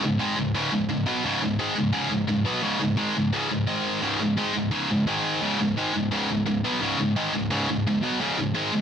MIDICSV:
0, 0, Header, 1, 2, 480
1, 0, Start_track
1, 0, Tempo, 348432
1, 1711, Time_signature, 4, 2, 24, 8
1, 12141, End_track
2, 0, Start_track
2, 0, Title_t, "Distorted electric guitar"
2, 0, Program_c, 0, 30
2, 50, Note_on_c, 0, 37, 68
2, 54, Note_on_c, 0, 44, 86
2, 232, Note_off_c, 0, 37, 0
2, 234, Note_off_c, 0, 44, 0
2, 265, Note_on_c, 0, 44, 92
2, 274, Note_on_c, 0, 51, 89
2, 278, Note_on_c, 0, 56, 100
2, 495, Note_off_c, 0, 44, 0
2, 503, Note_on_c, 0, 37, 59
2, 505, Note_off_c, 0, 51, 0
2, 507, Note_off_c, 0, 56, 0
2, 512, Note_on_c, 0, 44, 66
2, 699, Note_off_c, 0, 37, 0
2, 703, Note_off_c, 0, 44, 0
2, 752, Note_on_c, 0, 37, 82
2, 756, Note_on_c, 0, 44, 89
2, 766, Note_on_c, 0, 49, 105
2, 968, Note_off_c, 0, 37, 0
2, 981, Note_off_c, 0, 44, 0
2, 984, Note_on_c, 0, 37, 70
2, 991, Note_off_c, 0, 49, 0
2, 998, Note_on_c, 0, 44, 80
2, 1180, Note_off_c, 0, 37, 0
2, 1186, Note_off_c, 0, 44, 0
2, 1232, Note_on_c, 0, 37, 59
2, 1239, Note_on_c, 0, 44, 69
2, 1423, Note_off_c, 0, 37, 0
2, 1427, Note_off_c, 0, 44, 0
2, 1465, Note_on_c, 0, 47, 89
2, 1472, Note_on_c, 0, 54, 104
2, 1480, Note_on_c, 0, 59, 95
2, 1700, Note_off_c, 0, 47, 0
2, 1704, Note_off_c, 0, 54, 0
2, 1708, Note_off_c, 0, 59, 0
2, 1715, Note_on_c, 0, 37, 84
2, 1726, Note_on_c, 0, 44, 93
2, 1726, Note_on_c, 0, 49, 92
2, 1940, Note_off_c, 0, 37, 0
2, 1945, Note_off_c, 0, 44, 0
2, 1951, Note_off_c, 0, 49, 0
2, 1956, Note_on_c, 0, 37, 68
2, 1961, Note_on_c, 0, 44, 83
2, 2145, Note_off_c, 0, 37, 0
2, 2148, Note_off_c, 0, 44, 0
2, 2191, Note_on_c, 0, 44, 92
2, 2201, Note_on_c, 0, 51, 97
2, 2210, Note_on_c, 0, 56, 101
2, 2413, Note_off_c, 0, 44, 0
2, 2421, Note_on_c, 0, 37, 59
2, 2424, Note_off_c, 0, 51, 0
2, 2429, Note_on_c, 0, 44, 81
2, 2433, Note_off_c, 0, 56, 0
2, 2617, Note_off_c, 0, 37, 0
2, 2621, Note_off_c, 0, 44, 0
2, 2650, Note_on_c, 0, 37, 89
2, 2652, Note_on_c, 0, 44, 84
2, 2661, Note_on_c, 0, 49, 100
2, 2866, Note_off_c, 0, 37, 0
2, 2874, Note_off_c, 0, 44, 0
2, 2882, Note_on_c, 0, 37, 63
2, 2890, Note_on_c, 0, 44, 72
2, 2898, Note_off_c, 0, 49, 0
2, 3088, Note_off_c, 0, 37, 0
2, 3092, Note_off_c, 0, 44, 0
2, 3132, Note_on_c, 0, 37, 71
2, 3140, Note_on_c, 0, 44, 76
2, 3333, Note_off_c, 0, 37, 0
2, 3337, Note_off_c, 0, 44, 0
2, 3373, Note_on_c, 0, 47, 97
2, 3377, Note_on_c, 0, 59, 108
2, 3380, Note_on_c, 0, 54, 97
2, 3607, Note_off_c, 0, 47, 0
2, 3609, Note_off_c, 0, 54, 0
2, 3613, Note_on_c, 0, 37, 102
2, 3615, Note_on_c, 0, 44, 94
2, 3616, Note_off_c, 0, 59, 0
2, 3622, Note_on_c, 0, 49, 102
2, 3839, Note_off_c, 0, 37, 0
2, 3848, Note_off_c, 0, 44, 0
2, 3856, Note_on_c, 0, 37, 71
2, 3858, Note_off_c, 0, 49, 0
2, 3865, Note_on_c, 0, 44, 84
2, 4054, Note_off_c, 0, 37, 0
2, 4059, Note_off_c, 0, 44, 0
2, 4093, Note_on_c, 0, 51, 97
2, 4097, Note_on_c, 0, 44, 85
2, 4104, Note_on_c, 0, 56, 110
2, 4334, Note_off_c, 0, 51, 0
2, 4336, Note_off_c, 0, 44, 0
2, 4339, Note_off_c, 0, 56, 0
2, 4352, Note_on_c, 0, 37, 68
2, 4357, Note_on_c, 0, 44, 71
2, 4542, Note_off_c, 0, 37, 0
2, 4545, Note_off_c, 0, 44, 0
2, 4582, Note_on_c, 0, 44, 96
2, 4584, Note_on_c, 0, 37, 89
2, 4596, Note_on_c, 0, 49, 94
2, 4800, Note_off_c, 0, 37, 0
2, 4806, Note_off_c, 0, 44, 0
2, 4817, Note_on_c, 0, 37, 74
2, 4823, Note_on_c, 0, 44, 78
2, 4825, Note_off_c, 0, 49, 0
2, 5014, Note_off_c, 0, 37, 0
2, 5017, Note_off_c, 0, 44, 0
2, 5055, Note_on_c, 0, 44, 97
2, 5064, Note_on_c, 0, 51, 103
2, 5068, Note_on_c, 0, 56, 99
2, 5519, Note_off_c, 0, 44, 0
2, 5530, Note_off_c, 0, 51, 0
2, 5533, Note_on_c, 0, 37, 97
2, 5536, Note_on_c, 0, 44, 98
2, 5538, Note_off_c, 0, 56, 0
2, 5544, Note_on_c, 0, 49, 99
2, 5767, Note_off_c, 0, 37, 0
2, 5775, Note_off_c, 0, 44, 0
2, 5779, Note_off_c, 0, 49, 0
2, 5784, Note_on_c, 0, 37, 77
2, 5794, Note_on_c, 0, 44, 79
2, 5978, Note_off_c, 0, 37, 0
2, 5983, Note_off_c, 0, 44, 0
2, 6019, Note_on_c, 0, 44, 95
2, 6029, Note_on_c, 0, 51, 83
2, 6032, Note_on_c, 0, 56, 113
2, 6243, Note_off_c, 0, 44, 0
2, 6252, Note_on_c, 0, 37, 60
2, 6254, Note_off_c, 0, 51, 0
2, 6259, Note_on_c, 0, 44, 68
2, 6263, Note_off_c, 0, 56, 0
2, 6452, Note_off_c, 0, 37, 0
2, 6456, Note_off_c, 0, 44, 0
2, 6491, Note_on_c, 0, 37, 95
2, 6501, Note_on_c, 0, 44, 86
2, 6510, Note_on_c, 0, 49, 98
2, 6732, Note_off_c, 0, 37, 0
2, 6738, Note_off_c, 0, 44, 0
2, 6742, Note_off_c, 0, 49, 0
2, 6760, Note_on_c, 0, 44, 73
2, 6761, Note_on_c, 0, 37, 74
2, 6946, Note_off_c, 0, 44, 0
2, 6947, Note_off_c, 0, 37, 0
2, 6983, Note_on_c, 0, 44, 94
2, 6990, Note_on_c, 0, 51, 98
2, 7000, Note_on_c, 0, 56, 91
2, 7459, Note_off_c, 0, 44, 0
2, 7463, Note_off_c, 0, 51, 0
2, 7464, Note_on_c, 0, 37, 97
2, 7468, Note_off_c, 0, 56, 0
2, 7475, Note_on_c, 0, 49, 93
2, 7477, Note_on_c, 0, 44, 92
2, 7694, Note_off_c, 0, 37, 0
2, 7702, Note_off_c, 0, 44, 0
2, 7705, Note_off_c, 0, 49, 0
2, 7711, Note_on_c, 0, 37, 72
2, 7719, Note_on_c, 0, 44, 84
2, 7902, Note_off_c, 0, 37, 0
2, 7906, Note_off_c, 0, 44, 0
2, 7949, Note_on_c, 0, 44, 84
2, 7949, Note_on_c, 0, 51, 95
2, 7954, Note_on_c, 0, 56, 102
2, 8170, Note_off_c, 0, 44, 0
2, 8181, Note_off_c, 0, 51, 0
2, 8182, Note_on_c, 0, 37, 62
2, 8185, Note_off_c, 0, 56, 0
2, 8187, Note_on_c, 0, 44, 75
2, 8378, Note_off_c, 0, 37, 0
2, 8380, Note_off_c, 0, 44, 0
2, 8419, Note_on_c, 0, 37, 107
2, 8428, Note_on_c, 0, 49, 107
2, 8434, Note_on_c, 0, 44, 90
2, 8653, Note_off_c, 0, 44, 0
2, 8657, Note_off_c, 0, 37, 0
2, 8662, Note_off_c, 0, 49, 0
2, 8670, Note_on_c, 0, 44, 77
2, 8673, Note_on_c, 0, 37, 67
2, 8862, Note_off_c, 0, 44, 0
2, 8863, Note_off_c, 0, 37, 0
2, 8896, Note_on_c, 0, 37, 67
2, 8904, Note_on_c, 0, 44, 64
2, 9095, Note_off_c, 0, 37, 0
2, 9099, Note_off_c, 0, 44, 0
2, 9149, Note_on_c, 0, 47, 102
2, 9149, Note_on_c, 0, 54, 105
2, 9153, Note_on_c, 0, 59, 99
2, 9378, Note_off_c, 0, 47, 0
2, 9382, Note_off_c, 0, 54, 0
2, 9384, Note_on_c, 0, 37, 89
2, 9385, Note_off_c, 0, 59, 0
2, 9390, Note_on_c, 0, 44, 88
2, 9395, Note_on_c, 0, 49, 98
2, 9595, Note_off_c, 0, 37, 0
2, 9605, Note_off_c, 0, 44, 0
2, 9612, Note_on_c, 0, 37, 69
2, 9622, Note_on_c, 0, 44, 78
2, 9626, Note_off_c, 0, 49, 0
2, 9813, Note_off_c, 0, 37, 0
2, 9818, Note_off_c, 0, 44, 0
2, 9867, Note_on_c, 0, 44, 82
2, 9871, Note_on_c, 0, 56, 98
2, 9872, Note_on_c, 0, 51, 109
2, 10095, Note_off_c, 0, 44, 0
2, 10101, Note_on_c, 0, 37, 70
2, 10103, Note_off_c, 0, 56, 0
2, 10104, Note_off_c, 0, 51, 0
2, 10115, Note_on_c, 0, 44, 66
2, 10298, Note_off_c, 0, 37, 0
2, 10305, Note_off_c, 0, 44, 0
2, 10339, Note_on_c, 0, 37, 91
2, 10351, Note_on_c, 0, 44, 103
2, 10354, Note_on_c, 0, 49, 101
2, 10577, Note_off_c, 0, 37, 0
2, 10584, Note_off_c, 0, 44, 0
2, 10585, Note_off_c, 0, 49, 0
2, 10600, Note_on_c, 0, 37, 65
2, 10601, Note_on_c, 0, 44, 78
2, 10787, Note_off_c, 0, 37, 0
2, 10788, Note_off_c, 0, 44, 0
2, 10836, Note_on_c, 0, 37, 66
2, 10844, Note_on_c, 0, 44, 75
2, 11025, Note_off_c, 0, 37, 0
2, 11029, Note_off_c, 0, 44, 0
2, 11056, Note_on_c, 0, 47, 85
2, 11061, Note_on_c, 0, 54, 109
2, 11069, Note_on_c, 0, 59, 109
2, 11291, Note_off_c, 0, 47, 0
2, 11296, Note_on_c, 0, 37, 95
2, 11299, Note_off_c, 0, 54, 0
2, 11299, Note_off_c, 0, 59, 0
2, 11304, Note_on_c, 0, 49, 113
2, 11306, Note_on_c, 0, 44, 101
2, 11528, Note_off_c, 0, 44, 0
2, 11532, Note_off_c, 0, 37, 0
2, 11540, Note_off_c, 0, 49, 0
2, 11545, Note_on_c, 0, 44, 75
2, 11549, Note_on_c, 0, 37, 73
2, 11739, Note_off_c, 0, 44, 0
2, 11741, Note_off_c, 0, 37, 0
2, 11772, Note_on_c, 0, 44, 91
2, 11782, Note_on_c, 0, 51, 92
2, 11784, Note_on_c, 0, 56, 110
2, 12014, Note_off_c, 0, 44, 0
2, 12019, Note_off_c, 0, 51, 0
2, 12019, Note_off_c, 0, 56, 0
2, 12026, Note_on_c, 0, 37, 68
2, 12033, Note_on_c, 0, 44, 69
2, 12141, Note_off_c, 0, 37, 0
2, 12141, Note_off_c, 0, 44, 0
2, 12141, End_track
0, 0, End_of_file